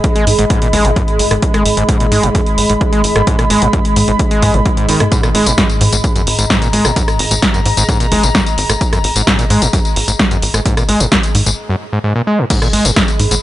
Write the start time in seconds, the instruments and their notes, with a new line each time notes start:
Already playing: synth drone G#2, analog synth pad G#4 D#5 B5
0.04 kick, closed hi-hat
0.16 acid bass G#3, closed hi-hat
0.27 analog synth bass G#2, open hi-hat
0.39 analog synth bass G#1, acid bass G#2, closed hi-hat
0.50 acid bass G#2, kick, closed hi-hat
0.62 acid bass A#2, closed hi-hat
0.73 analog synth bass G#1, acid bass G#3, kick, open hi-hat
0.85 analog synth bass G#1, acid bass G#2, closed hi-hat
0.96 acid bass F#2, kick, closed hi-hat
1.08 closed hi-hat
1.19 analog synth bass G#1, open hi-hat
1.31 analog synth bass G#1, acid bass G#2, cross-stick, closed hi-hat
1.42 kick, closed hi-hat
1.54 acid bass G#3, cross-stick, closed hi-hat
1.66 analog synth bass G#1, open hi-hat
1.77 analog synth bass G#1, acid bass G#2, closed hi-hat
1.89 acid bass G#2, kick, closed hi-hat
2.00 acid bass A#2, closed hi-hat
2.12 analog synth bass G#2, acid bass G#3, open hi-hat
2.23 analog synth bass G#1, acid bass G#2, closed hi-hat
2.35 acid bass F#2, kick, closed hi-hat
2.46 closed hi-hat
2.58 analog synth bass G#1, open hi-hat
2.70 analog synth bass G#1, acid bass G#2, closed hi-hat
2.81 kick, closed hi-hat
2.93 acid bass G#3, closed hi-hat
3.04 analog synth bass G#1, open hi-hat
3.16 analog synth bass G#1, acid bass G#2, cross-stick, closed hi-hat
3.27 acid bass G#2, kick, closed hi-hat
3.39 acid bass A#2, cross-stick, closed hi-hat
3.50 analog synth bass G#1, acid bass G#3, open hi-hat
3.62 analog synth bass G#1, acid bass G#2, closed hi-hat
3.73 acid bass F#2, kick, closed hi-hat
3.85 closed hi-hat
3.96 analog synth bass G#2, open hi-hat
4.08 analog synth bass G#1, acid bass G#2, closed hi-hat
4.19 kick, closed hi-hat
4.31 acid bass G#3, closed hi-hat
4.42 analog synth bass G#2, kick, open hi-hat
4.54 analog synth bass G#1, acid bass G#2, closed hi-hat
4.66 acid bass F#2, kick, closed hi-hat
4.77 acid bass G#2, closed hi-hat
4.89 analog synth bass G#1, acid bass D#3, open hi-hat
5.00 acid bass G#2, analog synth bass G#2, cross-stick, closed hi-hat
5.12 acid bass G#2, kick, closed hi-hat, tambourine
5.23 acid bass A#2, cross-stick, closed hi-hat, tambourine
5.35 analog synth bass G#1, acid bass G#3, open hi-hat
5.46 analog synth bass G#1, acid bass G#2, closed hi-hat, tambourine
5.58 acid bass F#2, kick, snare, closed hi-hat, tambourine
5.70 closed hi-hat, tambourine
5.81 analog synth bass G#2, open hi-hat
5.92 analog synth bass G#1, acid bass G#2, closed hi-hat, tambourine
6.04 kick, closed hi-hat, tambourine
6.15 acid bass F#2, analog synth pad A#5, closed hi-hat, tambourine
6.27 analog synth bass G#1, open hi-hat
6.39 analog synth bass G#1, acid bass G#2, closed hi-hat, tambourine
6.50 acid bass G#2, kick, snare, closed hi-hat, tambourine
6.62 acid bass A#2, closed hi-hat, tambourine
6.73 analog synth bass G#1, acid bass G#3, open hi-hat
6.85 analog synth bass G#1, acid bass G#2, cross-stick, closed hi-hat, tambourine
6.96 acid bass F#2, kick, closed hi-hat, tambourine
7.08 cross-stick, closed hi-hat, tambourine
7.19 analog synth bass G#1, open hi-hat
7.31 analog synth bass G#1, acid bass G#2, closed hi-hat, tambourine
7.42 kick, snare, closed hi-hat
7.54 acid bass F#2, closed hi-hat, tambourine
7.66 analog synth bass G#2, open hi-hat
7.77 analog synth bass G#1, acid bass G#2, closed hi-hat, tambourine
7.89 acid bass G#2, kick, closed hi-hat, tambourine
8.00 acid bass A#2, closed hi-hat, tambourine
8.12 analog synth bass G#1, acid bass G#3, kick, open hi-hat
8.23 analog synth bass G#1, acid bass G#2, closed hi-hat, tambourine
8.35 acid bass F#2, kick, snare, closed hi-hat, tambourine
8.46 closed hi-hat, tambourine
8.58 analog synth bass G#1, open hi-hat
8.70 analog synth bass G#1, acid bass G#2, cross-stick, closed hi-hat, tambourine
8.81 kick, closed hi-hat, tambourine
8.93 acid bass F#2, cross-stick, closed hi-hat, tambourine
9.04 analog synth bass G#1, open hi-hat
9.16 analog synth bass G#1, acid bass G#2, closed hi-hat, tambourine
9.27 acid bass G#2, kick, snare, closed hi-hat, tambourine
9.39 acid bass A#2, closed hi-hat, tambourine
9.50 analog synth bass G#2, acid bass G#3, open hi-hat
9.62 analog synth bass G#1, acid bass G#2, closed hi-hat, tambourine
9.73 acid bass F#2, kick, closed hi-hat, tambourine
9.85 closed hi-hat, tambourine
9.96 analog synth bass G#1, open hi-hat
10.08 analog synth bass G#1, acid bass G#2, closed hi-hat, tambourine
10.19 kick, snare, closed hi-hat, tambourine
10.31 acid bass F#2, closed hi-hat, tambourine
10.42 analog synth bass G#1, open hi-hat
10.54 analog synth bass G#1, acid bass G#2, cross-stick, closed hi-hat, tambourine
10.66 acid bass G#2, kick, closed hi-hat, tambourine
10.77 acid bass A#2, cross-stick, closed hi-hat, tambourine
10.89 analog synth bass G#1, acid bass G#3, open hi-hat
11.00 analog synth bass G#1, acid bass G#2, closed hi-hat, tambourine
11.12 acid bass F#2, kick, snare, closed hi-hat, tambourine
11.23 closed hi-hat, tambourine
11.35 analog synth bass G#2, open hi-hat
11.46 analog synth bass G#1, acid bass G#2, closed hi-hat, tambourine
11.69 acid bass F#2
11.93 acid bass G#2
12.04 acid bass G#2
12.16 acid bass A#2
12.27 acid bass G#3
12.39 acid bass G#2
12.50 acid bass G#2, analog synth pad G#4, kick, closed hi-hat, crash, tambourine
12.62 acid bass A#2, cross-stick, closed hi-hat, tambourine
12.73 analog synth bass G#1, acid bass G#3, open hi-hat
12.83 analog synth bass G#1, acid bass G#2, analog synth pad B5, closed hi-hat, tambourine
12.96 acid bass F#2, kick, snare, closed hi-hat, tambourine
13.08 analog synth pad D#5, closed hi-hat, tambourine
13.20 analog synth bass G#2, open hi-hat
13.31 analog synth bass G#1, acid bass G#2, closed hi-hat, tambourine